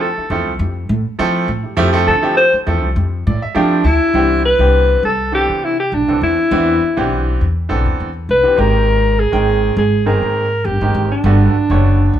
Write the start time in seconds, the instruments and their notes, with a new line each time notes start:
0.02 alto saxophone A4
0.17 grand piano E4 A4, muted upright bass stroke
0.30 upright bass E2, grand piano F3 A3 C4 E4 A4
0.46 upright bass C2
0.59 upright bass F2, grand piano E4 G4
0.89 upright bass A2, grand piano E4 A4
1.19 grand piano F3 A3 C4 E4 A4, upright bass F3
1.48 upright bass A2
1.63 grand piano E4 G4
1.77 upright bass F2, grand piano F3 A3 C4 E4 G4
1.93 grand piano F3 A3 C4 E4 A4
2.07 upright bass D3, alto saxophone A4
2.22 grand piano F3 A3 C4 E4 G4
2.37 alto saxophone C5
2.53 grand piano E4 A4, muted upright bass stroke
2.66 upright bass E2, grand piano F3 A3 C4 E4 A4
2.84 upright bass C2
2.96 upright bass F2, grand piano E4 G4
3.26 upright bass A2, grand piano E4 A4 D5
3.42 grand piano E5
3.55 grand piano F3 A3 C4 E4 G4 F5, upright bass F3, alto saxophone D4
3.84 upright bass D2, alto saxophone E4, grand piano A5
4.01 grand piano E4 G4
4.14 upright bass C2, grand piano E3 B3 C4 D4 G4
4.45 alto saxophone B4
4.59 upright bass C2, grand piano E3 B3 C4 D4 G4
5.03 upright bass C2, alto saxophone A4
5.32 upright bass B1, grand piano E3 B3 C4 D4 A4, alto saxophone G4
5.49 upright bass C3
5.65 alto saxophone E4
5.80 alto saxophone G4
5.92 upright bass B1, grand piano D4 A4, alto saxophone D4
6.08 upright bass C2, grand piano E3 B3 C4 D4 A4
6.22 upright bass E2, alto saxophone E4
6.51 upright bass E2, grand piano E3 B3 C4 D4 E4
6.81 muted upright bass stroke
6.97 upright bass B1, grand piano E3 B3 C4 D4 G4
7.41 upright bass E2
7.69 upright bass B1, grand piano E3 B3 C4 D4 A4
7.86 upright bass E2
8.00 upright bass E2
8.29 upright bass C2, grand piano D4 E4, alto saxophone B4
8.43 grand piano E3 B3 C4 D4 G4
8.56 upright bass G#1, grand piano D#3 G#3 A#3 C4 G4, alto saxophone A#4
9.20 alto saxophone G#4
9.32 upright bass G#1, grand piano D#3 G#3 A#3 C4 G5
9.77 upright bass G#1, alto saxophone G#4
10.06 upright bass G1, grand piano D#3 G#3 A#3 C4 G#4, alto saxophone A#4
10.22 upright bass G#2
10.65 upright bass G1, grand piano C4 A#4, alto saxophone G4
10.81 upright bass G#1, grand piano D#3 G#3 A#3 C4 G4
10.95 upright bass G#1
11.12 alto saxophone D4
11.24 upright bass G1, grand piano D3 G3 A3 B3 F#4
11.54 muted upright bass stroke
11.70 upright bass F#1, grand piano D3 G3 A3 B3 C#5
12.13 upright bass C#2